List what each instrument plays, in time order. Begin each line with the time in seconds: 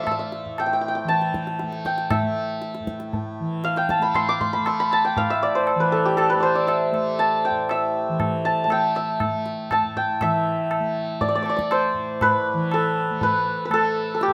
Already playing: tanpura A2 E3 A3, santur C5 D5
0.04 santur E5, tabla na, tabla ge
0.11 santur E5
0.19 santur E5
0.32 tabla te
0.45 tanpura A2
0.58 santur G5, tabla na
0.66 santur G5
0.73 santur G5
0.81 santur G5
0.88 santur G5
0.95 santur G5
1.04 tanpura E3
1.08 santur A5, tabla te
1.22 tabla te
1.34 tabla ke
1.47 tabla te
1.59 tanpura A3, tabla te
1.72 tabla te
1.85 santur G5, tabla ke
1.98 tabla te
2.10 santur E5, tabla na, tabla ge
2.22 tanpura A3
2.62 tabla te
2.75 tabla te
2.80 tanpura A2
2.87 tabla ke
3.00 tabla te
3.13 tabla tin, tabla ge
3.39 tanpura E3
3.64 santur F5, tabla te
3.76 santur G5, tabla te
3.89 santur A5, tabla ke
3.99 tanpura A3, santur B5, tabla te
4.14 santur C6, tabla na, tabla ge
4.29 santur D6
4.41 santur C6, tabla ge
4.53 tanpura A3, santur B5
4.66 santur C6, tabla na
4.80 santur B5
4.91 santur A5, tabla na
5.05 santur G5
5.15 tanpura A2, santur F5, tabla tin, tabla ge
5.30 santur E5
5.43 santur D5
5.55 santur C5
5.67 tabla na
5.75 tanpura E3
5.80 santur B4
5.92 santur A4
6.05 santur G4
6.17 santur A4, tabla na
6.30 santur B4
6.34 tanpura A3
6.40 santur C5 D5, tabla na
6.55 santur D5
6.67 santur E5, tabla na
6.92 tanpura A3, tabla na
7.19 santur A5, tabla tin
7.45 santur G5
7.51 tanpura A2
7.69 santur E5, tabla na
8.08 tanpura E3
8.20 tabla na, tabla ge
8.45 santur A5
8.64 tanpura A3, santur A5
8.70 santur G5, tabla na
8.95 santur E5, tabla na
9.20 tanpura A3, tabla na, tabla ge
9.46 tabla te
9.71 santur A5, tabla na, tabla ge
9.82 tanpura A2
9.96 santur G5, tabla ge
10.21 tanpura E3, santur E5, tabla na, tabla ge
10.71 tabla na
10.80 tanpura A3
11.21 santur D5, tabla tin, tabla ge
11.28 santur D5
11.35 tanpura A3, santur D5
11.43 santur D5, tabla na
11.49 santur D5
11.57 santur D5, tabla ke
11.71 santur C5, tabla na
11.94 tanpura A2
12.21 santur B4, tabla na, tabla ge
12.53 tanpura E3
12.72 santur A4, tabla na
13.10 tanpura A3
13.21 santur B4, tabla tin, tabla ge
13.65 santur B4
13.70 tanpura A3, santur A4, tabla na
14.15 santur A4
14.21 santur G4, tabla te
14.28 tanpura A2